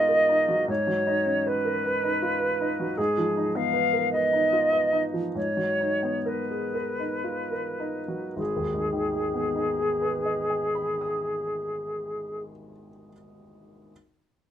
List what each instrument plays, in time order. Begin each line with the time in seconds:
Already playing: grand piano G#2 F#3 B3 D#4 F4 G#4 A#4, flute D#5
0.09 grand piano A#4
0.29 grand piano D#4
0.48 grand piano F#3
0.68 grand piano G#2, flute C#5
0.87 grand piano F#3
1.07 grand piano D#4
1.26 grand piano C#4
1.46 grand piano B4, flute B4
1.65 grand piano A#4
1.84 grand piano B4
2.03 grand piano D#4
2.22 grand piano F4
2.40 grand piano B4
2.61 grand piano D#4
2.80 grand piano F#3
2.97 grand piano G#2, flute G#4
3.18 grand piano F3
3.37 grand piano D#4
3.55 grand piano B3, flute F5
3.73 grand piano B4
3.93 grand piano A#4
4.12 grand piano B4, flute D#5
4.33 grand piano D#4
4.53 grand piano F4
4.72 grand piano B4
4.93 grand piano D#4
5.14 grand piano F3
5.35 grand piano G#2, flute C#5
5.57 grand piano F#3
5.81 grand piano D#4
6.03 grand piano B3
6.26 grand piano A#4, flute B4
6.51 grand piano G#4
6.74 grand piano A#4
7.00 grand piano D#4
7.24 grand piano F4
7.51 grand piano A#4
7.80 grand piano D#4
8.08 grand piano F#3
8.36 grand piano G#1, flute G#4
8.56 grand piano D#2
8.74 grand piano G#2
8.93 grand piano D#3
9.13 grand piano G#3
9.34 grand piano B3
9.56 grand piano D#4
9.79 grand piano G#4
10.01 grand piano B4
10.25 grand piano D#5
10.50 grand piano G#5
10.75 grand piano B5
11.01 grand piano D#6